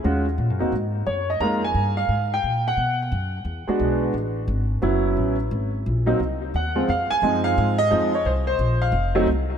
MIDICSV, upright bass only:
0, 0, Header, 1, 3, 480
1, 0, Start_track
1, 0, Tempo, 341880
1, 67, Time_signature, 4, 2, 24, 8
1, 13448, End_track
2, 0, Start_track
2, 0, Title_t, "Upright bass"
2, 0, Program_c, 0, 32
2, 62, Note_on_c, 0, 39, 67
2, 524, Note_off_c, 0, 39, 0
2, 532, Note_on_c, 0, 46, 68
2, 700, Note_off_c, 0, 46, 0
2, 700, Note_on_c, 0, 42, 43
2, 854, Note_off_c, 0, 42, 0
2, 862, Note_on_c, 0, 39, 50
2, 1004, Note_off_c, 0, 39, 0
2, 1013, Note_on_c, 0, 44, 64
2, 1485, Note_off_c, 0, 44, 0
2, 1493, Note_on_c, 0, 42, 62
2, 1960, Note_off_c, 0, 42, 0
2, 1969, Note_on_c, 0, 41, 64
2, 2443, Note_off_c, 0, 41, 0
2, 2450, Note_on_c, 0, 43, 70
2, 2924, Note_off_c, 0, 43, 0
2, 2929, Note_on_c, 0, 44, 71
2, 3403, Note_off_c, 0, 44, 0
2, 3422, Note_on_c, 0, 46, 64
2, 3881, Note_off_c, 0, 46, 0
2, 3890, Note_on_c, 0, 47, 67
2, 4364, Note_off_c, 0, 47, 0
2, 4376, Note_on_c, 0, 42, 76
2, 4831, Note_off_c, 0, 42, 0
2, 4840, Note_on_c, 0, 40, 71
2, 5140, Note_off_c, 0, 40, 0
2, 5328, Note_on_c, 0, 35, 69
2, 5800, Note_off_c, 0, 35, 0
2, 5809, Note_on_c, 0, 33, 62
2, 6276, Note_off_c, 0, 33, 0
2, 6285, Note_on_c, 0, 32, 77
2, 6763, Note_off_c, 0, 32, 0
2, 6770, Note_on_c, 0, 30, 69
2, 7246, Note_off_c, 0, 30, 0
2, 7256, Note_on_c, 0, 33, 67
2, 7729, Note_off_c, 0, 33, 0
2, 7738, Note_on_c, 0, 32, 71
2, 8210, Note_off_c, 0, 32, 0
2, 8230, Note_on_c, 0, 34, 75
2, 8692, Note_off_c, 0, 34, 0
2, 8700, Note_on_c, 0, 36, 63
2, 9171, Note_off_c, 0, 36, 0
2, 9183, Note_on_c, 0, 39, 67
2, 9653, Note_off_c, 0, 39, 0
2, 9668, Note_on_c, 0, 41, 77
2, 9956, Note_off_c, 0, 41, 0
2, 10136, Note_on_c, 0, 42, 76
2, 10608, Note_off_c, 0, 42, 0
2, 10639, Note_on_c, 0, 44, 89
2, 11100, Note_off_c, 0, 44, 0
2, 11115, Note_on_c, 0, 41, 74
2, 11577, Note_off_c, 0, 41, 0
2, 11584, Note_on_c, 0, 36, 75
2, 12052, Note_off_c, 0, 36, 0
2, 12060, Note_on_c, 0, 34, 79
2, 12513, Note_off_c, 0, 34, 0
2, 12521, Note_on_c, 0, 29, 86
2, 12999, Note_off_c, 0, 29, 0
2, 13009, Note_on_c, 0, 36, 71
2, 13448, Note_off_c, 0, 36, 0
2, 13448, End_track
3, 0, Start_track
3, 0, Title_t, "Muted upright bass strokes"
3, 5171, Note_on_c, 9, 29, 37
3, 5311, Note_off_c, 9, 29, 0
3, 9993, Note_on_c, 9, 29, 33
3, 10133, Note_off_c, 9, 29, 0
3, 13448, End_track
0, 0, End_of_file